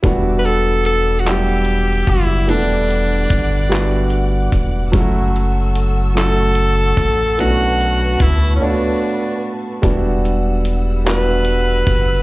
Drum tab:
HH |xxxxxx|xxxxxx|xxxxxx|xxx---|
CP |---x--|---x--|---x--|------|
BD |o----o|--o--o|o----o|--o---|

HH |xxxxxx|
CP |---x--|
BD |o----o|